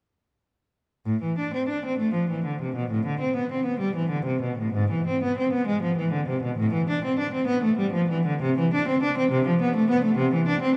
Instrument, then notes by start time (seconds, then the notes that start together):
cello
1.06 A2
1.23 E3
1.39 D4
1.54 C4
1.69 D4
1.86 C4
1.99 A3
2.14 F3
2.30 E3
2.45 D3
2.62 C3
2.76 B2
2.91 A2
3.07 D3
3.20 C4
3.36 B3
3.52 C4
3.66 B3
3.80 G3
3.96 E3
4.10 D3
4.26 C3
4.42 B2
4.59 A2
4.74 G#2
4.91 E3
5.07 C4
5.23 B3
5.38 C4
5.53 B3
5.67 G#3
5.82 F3
5.98 E3
6.13 D3
6.28 C3
6.43 B2
6.58 A2
6.74 E3
6.90 D4
7.04 C4
7.19 D4
7.34 C4
7.47 B3
7.64 A3
7.78 G3
7.93 F3
8.10 E3
8.26 D3
8.42 C3
8.59 E3
8.74 D4
8.88 C4
9.03 D4
9.18 C4
9.31 C3
9.47 F3
9.62 B3
9.76 A3
9.90 B3
10.04 A3
10.17 C3
10.34 E3
10.48 D4
10.62 C4